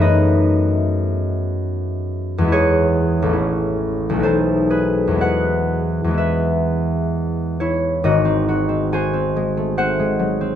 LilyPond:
<<
  \new Staff \with { instrumentName = "Harp" } { \time 3/4 \key e \major \tempo 4 = 71 << { <b' cis'' dis''>2. | <gis' cis''>2 <a' c''>8 <gis' b'>8 | <b' fis''>4 <b' e''>4. <e' cis''>8 | <fis' dis''>4 <bis' gis''>4 <bis' fis''>4 | } \\ { r2. | r2. | r2. | <gis,, gis,>16 bis16 fis'16 bis16 fis'16 bis16 gis16 a16 bis16 gis16 fis16 bis16 | } >> }
  \new Staff \with { instrumentName = "Harp" } { \time 3/4 \key e \major <fis, a b dis'>2. | <e, gis b e'>4 <a,, a cis' e'>4 <b,, a b dis'>4 | <e, gis b e'>4 <e, gis b e'>2~ | <e, gis b e'>2. | }
>>